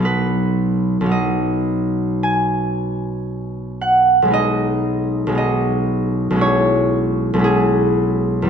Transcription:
<<
  \new Staff \with { instrumentName = "Harp" } { \time 4/4 \key b \major \tempo 4 = 57 b'4 dis''4 gis''4. fis''8 | dis''4 dis''4 cis''4 gis'4 | }
  \new Staff \with { instrumentName = "Harp" } { \time 4/4 \key b \major <b,, fis b dis'>4 <b,, fis b dis'>2. | <b,, gis b dis'>4 <b,, gis b dis'>4 <b,, gis cis' e'>4 <b,, gis cis' e'>4 | }
>>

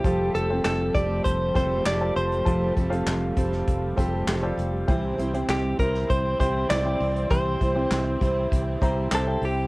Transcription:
<<
  \new Staff \with { instrumentName = "Clean electric guitar" } { \time 4/4 \key f \major \tempo 4 = 99 g'8 a'8 a'8 d''8 c''8 c''8 d''8 c''8~ | c''8 r2. r8 | r4 g'8 bes'8 c''8 c''8 d''4 | c''2 r4 a'8 g'8 | }
  \new Staff \with { instrumentName = "Grand piano" } { \time 4/4 \key f \major <f' a' c'' g''>8. <f' a' c'' g''>4. r16 <f' a' c'' g''>8. <f' a' c'' a''>8. | <f' a' c'' a''>8. <f' a' c'' f''>4. r16 <f' a' c'' g''>8. <f' a' c'' d''>8. | <e' g' c'' g''>8. <e' g' c'' g''>4. r16 <e' g' c'' g''>8. <e' g' c'' g''>8. | <e' g' c'' g''>8. <e' g' c'' g''>4. r16 <e' g' c'' bes''>8. <e' g' c'' g''>8. | }
  \new Staff \with { instrumentName = "Grand piano" } { \clef bass \time 4/4 \key f \major r1 | r1 | c4. r2 r8 | c4. r2 r8 | }
  \new Staff \with { instrumentName = "Steel-string acoustic guitar" } { \time 4/4 \key f \major <f g c' g' a'>8 <g c' g' a'>16 <c' g' a'>8. <g c' g' a'>4 <g c' g' a'>8 <g c' g' a'>4 | <f g c' g' a'>8 <g c' g' a'>16 <c' g' a'>8. <g c' g' a'>4 <g c' g' a'>8 <g c' g' a'>4 | <c e g c' e' c''>8 <g c' e' c''>16 <g c' e' c''>8. <g c' e' c''>4 <g c' e' c''>8 <g c' e' c''>4 | <c e g c' e' c''>8 <g c' e' c''>16 <g c' e' c''>8. <g c' e' c''>4 <g c' e' c''>8 <g c' e' c''>4 | }
  \new Staff \with { instrumentName = "String section" } { \clef bass \time 4/4 \key f \major << { <f a>1~ | <f a>1 | <e c'>1~ | <e c'>1 | } \\ { g1~ | g1~ | g1~ | g1 | } >> }
  \new Staff \with { instrumentName = "Fretless electric bass" } { \clef bass \time 4/4 \key f \major f,,8 f,,8 f,,8 f,,8 f,,8 f,,8 f,,8 f,,8 | f,,8 f,,8 f,,8 f,,8 f,,8 f,,8 f,,8 f,,8 | c,8 c,8 c,8 c,8 c,8 c,8 c,8 c,8 | c,8 c,8 c,8 c,8 c,8 c,8 c,8 c,8 | }
  \new DrumStaff \with { instrumentName = "Drums" } \drummode { \time 4/4 <hh bd>8 hh8 <hc hh sn>8 <hh bd>8 <hh bd>8 <hh bd>8 <hc hh sn>8 hh16 hh16 | <hh bd>8 <hh bd>16 hh16 <hc hh sn>8 <hh bd>16 sn16 <hh bd>8 <hh bd>8 <hc hh sn>8 hh8 | <hh bd>8 hh16 hh16 <hc hh sn>8 <hh bd>16 sn16 <hh bd>8 <hh bd>8 <hc hh sn>8 hho16 hh16 | <hh bd>8 <hh bd>8 <hc hh sn>8 <hh bd>8 <hh bd>8 <hh bd>8 <hc hh sn>8 hho8 | }
>>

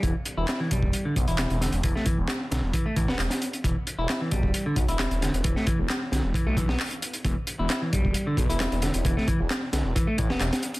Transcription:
<<
  \new Staff \with { instrumentName = "Clean electric guitar" } { \clef bass \time 4/4 \key e \minor \tempo 4 = 133 e16 r8 e'8 e16 g8. d16 r16 e'8. d16 r16 | e16 a16 e16 r8. d16 r16 e16 a16 e16 b16 r4 | e16 r8 e'8 e16 g8. d16 r16 e'8. d16 r16 | e16 a16 e16 r8. d16 r16 e16 a16 e16 b16 r4 |
e16 r8 e'8 e16 g8. d16 r16 e'8. d16 r16 | e16 a16 e16 r8. d16 r16 e16 a16 e16 b16 r4 | }
  \new Staff \with { instrumentName = "Detuned saw bass" } { \clef bass \time 4/4 \key e \minor e,,16 r8 e,,16 r8 b,,16 e,,16 r8 b,,16 e,,8 e,,8 e,,16 | e,,16 r8 e,,16 r8 b,,16 e,,16 r8 a,,16 e,,16 e,,16 r8. | e,,16 r8 e,,16 r8 b,,16 e,,16 r8 b,,16 e,,8 e,,8 e,,16 | e,,16 r8 e,,16 r8 b,,16 e,,16 r16 b,,8. r4 |
e,,16 r8 e,,16 r8 b,,16 e,,16 r8 b,,16 e,,8 e,,8 e,,16 | e,,16 r8 e,,16 r8 b,,16 e,,16 r8 a,,16 e,,16 e,,16 r8. | }
  \new DrumStaff \with { instrumentName = "Drums" } \drummode { \time 4/4 <hh bd>8 hh8 <hc hh sn>8 <hh bd>16 bd16 hh8 <hh bd>16 hh16 <hc hh sn>16 hh16 <hh sn>16 hh16 | <hh bd>16 sn16 <hh bd>8 <hc hh sn>8 <hh sn>8 <hh bd>8 <hh bd>16 sn16 <hc hh sn>16 <hh sn>16 hh16 hh16 | <hh bd>8 hh8 <hc hh sn>8 <hh bd>16 bd16 hh8 <hh bd>16 hh16 <hc hh sn>16 hh16 <hh sn>16 hh16 | <hh bd>16 sn16 <hh bd>8 <hc hh sn>8 <hh sn>8 <hh bd>8 <hh bd>16 sn16 <hc hho>16 hh16 hh16 hh16 |
<hh bd>8 hh8 <hc hh sn>8 <hh bd>16 bd16 hh8 <hh bd>16 hh16 <hc hh sn>16 hh16 <hh sn>16 hh16 | <hh bd>16 sn16 <hh bd>8 <hc hh sn>8 <hh sn>8 <hh bd>8 <hh bd>16 sn16 <hc hh sn>16 <hh sn>16 hh16 hh16 | }
>>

